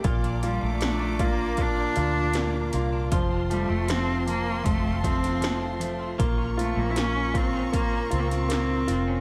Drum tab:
HH |xxx-x-x-x-x-x-x-|x-x-x-x-x-xxx-x-|x-x-x-x-x-xxx-x-|
SD |----o-------o---|----o------oo---|----o------oo---|
BD |o-----o-o-------|o-------o-o-----|o-----o-o-------|